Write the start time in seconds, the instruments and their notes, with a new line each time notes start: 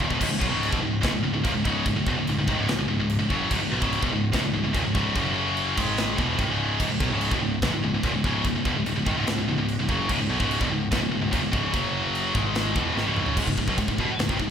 0.00 kick
0.08 picked electric bass E1, distorted electric guitar E2 B2, kick
0.19 picked electric bass C#1, distorted electric guitar C#2 G#2, kick, crash, china
0.28 picked electric bass C#1, distorted electric guitar C#2 G#2
0.38 picked electric bass B1, distorted electric guitar B2 F#3, kick
0.49 picked electric bass C#1, distorted electric guitar C#2 G#2 C#3
0.63 china
0.69 picked electric bass E1, distorted electric guitar E2 B2, kick
0.81 picked electric bass C#1, distorted electric guitar C#2 G#2
1.02 picked electric bass C#1, distorted electric guitar C#2 G#2, kick, snare, china
1.13 picked electric bass C#1, distorted electric guitar C#2 G#2
1.23 picked electric bass C#1, distorted electric guitar C#2 G#2
1.32 picked electric bass C#1, distorted electric guitar C#2 G#2
1.44 picked electric bass D#1, distorted electric guitar D#2 A#2, kick, china
1.54 picked electric bass C#1, distorted electric guitar C#2 G#2
1.64 picked electric bass C#1, distorted electric guitar C#2 G#2 C#3, kick
1.86 picked electric bass C#1, distorted electric guitar C#2 G#2, kick, china
1.96 picked electric bass C#1, distorted electric guitar C#2 G#2
2.06 picked electric bass E1, distorted electric guitar E2 B2, kick
2.17 picked electric bass C#1, distorted electric guitar C#2 G#2
2.27 picked electric bass C#1, distorted electric guitar C#2 G#2, china
2.38 picked electric bass C#1, distorted electric guitar C#2 G#2
2.48 picked electric bass G#1, distorted electric guitar G#2 D#3, kick
2.58 picked electric bass C#1, distorted electric guitar C#2 G#2
2.68 picked electric bass C#1, distorted electric guitar C#2 G#2, snare, china
2.79 picked electric bass C#1, distorted electric guitar C#2 G#2
2.88 picked electric bass C#1, distorted electric guitar C#2 G#2
2.99 picked electric bass C#1, distorted electric guitar C#2 G#2
3.09 china
3.19 picked electric bass C#1, distorted electric guitar C#2 G#2
3.30 picked electric bass F#1, distorted electric guitar F#2 C#3 F#3, kick
3.49 picked electric bass C#1, distorted electric guitar C#2 G#2, kick, china, crash
3.60 picked electric bass C#1, distorted electric guitar C#2 G#2
3.70 picked electric bass B1, distorted electric guitar B2 F#3
3.81 picked electric bass C#1, distorted electric guitar C#2 G#2 C#3, kick
3.93 china
4.02 picked electric bass E1, distorted electric guitar E2 B2, kick
4.13 picked electric bass C#1, distorted electric guitar C#2 G#2
4.33 picked electric bass C#1, distorted electric guitar C#2 G#2, kick, snare, china
4.44 picked electric bass C#1, distorted electric guitar C#2 G#2
4.54 picked electric bass C#1, distorted electric guitar C#2 G#2
4.64 picked electric bass C#1, distorted electric guitar C#2 G#2
4.73 picked electric bass D#1, distorted electric guitar D#2 A#2, kick, china
4.85 picked electric bass C#1, distorted electric guitar C#2 G#2
4.95 picked electric bass C#1, distorted electric guitar C#2 G#2 C#3, kick
5.15 picked electric bass F#1, distorted electric guitar F#2 C#3 F#3, kick, china
5.57 china
5.77 picked electric bass G#1, distorted electric guitar G#2 D#3 G#3, kick, crash
5.98 snare, china
6.18 picked electric bass E1, distorted electric guitar E2 B2 E3, kick
6.39 picked electric bass G#1, distorted electric guitar G#2 D#3, kick, china
6.49 picked electric bass C#1, distorted electric guitar C#2 G#2 C#3
6.79 picked electric bass C#1, distorted electric guitar C#2 G#2, kick, china, crash
6.90 picked electric bass C#1, distorted electric guitar C#2 G#2
7.00 picked electric bass B1, distorted electric guitar B2 F#3, kick
7.10 picked electric bass C#1, distorted electric guitar C#2 G#2 C#3
7.21 china
7.31 picked electric bass E1, distorted electric guitar E2 B2, kick
7.40 picked electric bass C#1, distorted electric guitar C#2 G#2
7.62 picked electric bass C#1, distorted electric guitar C#2 G#2, kick, snare, china
7.71 picked electric bass C#1, distorted electric guitar C#2 G#2
7.82 picked electric bass C#1, distorted electric guitar C#2 G#2
7.91 picked electric bass C#1, distorted electric guitar C#2 G#2
8.03 picked electric bass D#1, distorted electric guitar D#2 A#2, kick, china
8.13 picked electric bass C#1, distorted electric guitar C#2 G#2
8.24 picked electric bass C#1, distorted electric guitar C#2 G#2 C#3, kick
8.45 picked electric bass C#1, distorted electric guitar C#2 G#2, kick, china
8.54 picked electric bass C#1, distorted electric guitar C#2 G#2
8.65 picked electric bass E1, distorted electric guitar E2 B2, kick
8.74 picked electric bass C#1, distorted electric guitar C#2 G#2
8.84 picked electric bass C#1, distorted electric guitar C#2 G#2, china
8.95 picked electric bass C#1, distorted electric guitar C#2 G#2
9.06 picked electric bass G#1, distorted electric guitar G#2 D#3, kick
9.15 picked electric bass C#1, distorted electric guitar C#2 G#2
9.26 picked electric bass C#1, distorted electric guitar C#2 G#2, snare, china
9.37 picked electric bass C#1, distorted electric guitar C#2 G#2
9.47 picked electric bass C#1, distorted electric guitar C#2 G#2
9.57 picked electric bass C#1, distorted electric guitar C#2 G#2
9.68 china
9.78 picked electric bass C#1, distorted electric guitar C#2 G#2
9.89 picked electric bass F#1, distorted electric guitar F#2 C#3 F#3, kick
10.09 picked electric bass C#1, distorted electric guitar C#2 G#2, kick, china, crash
10.20 picked electric bass C#1, distorted electric guitar C#2 G#2
10.29 picked electric bass B1, distorted electric guitar B2 F#3
10.40 picked electric bass C#1, distorted electric guitar C#2 G#2 C#3, kick
10.51 china
10.60 picked electric bass E1, distorted electric guitar E2 B2, kick
10.70 picked electric bass C#1, distorted electric guitar C#2 G#2
10.92 picked electric bass C#1, distorted electric guitar C#2 G#2, kick, snare, china
11.01 picked electric bass C#1, distorted electric guitar C#2 G#2
11.11 picked electric bass C#1, distorted electric guitar C#2 G#2
11.20 picked electric bass C#1, distorted electric guitar C#2 G#2
11.31 picked electric bass D#1, distorted electric guitar D#2 A#2, kick, china
11.41 picked electric bass C#1, distorted electric guitar C#2 G#2
11.51 picked electric bass C#1, distorted electric guitar C#2 G#2 C#3, kick
11.72 picked electric bass F#1, distorted electric guitar F#2 C#3 F#3, kick, china
12.15 china
12.34 picked electric bass G#1, distorted electric guitar G#2 D#3 G#3, kick
12.55 snare, china
12.75 picked electric bass E1, distorted electric guitar E2 B2 E3, kick
12.95 picked electric bass G#1, distorted electric guitar G#2 D#3, snare
13.06 picked electric bass C#1, distorted electric guitar C#2 G#2 C#3
13.16 mid tom
13.26 floor tom
13.37 picked electric bass C#1, distorted electric guitar C#2 G#2, kick, crash
13.47 picked electric bass C#1, distorted electric guitar C#2 G#2, kick
13.58 picked electric bass C#1, distorted electric guitar C#2 G#2, kick
13.67 picked electric bass B1, distorted electric guitar B2 F#3, kick
13.78 picked electric bass C#1, distorted electric guitar C#2 G#2, kick, crash
13.88 picked electric bass C#1, distorted electric guitar C#2 G#2, kick
13.98 picked electric bass E1, distorted electric guitar E2 B2, kick
14.08 muted picked electric bass stroke, muted distorted electric guitar stroke
14.18 picked electric bass C#1, distorted electric guitar C#2 G#2, snare, crash
14.29 picked electric bass G#1, distorted electric guitar G#2 D#3, kick
14.39 picked electric bass C#1, distorted electric guitar C#2 G#2, kick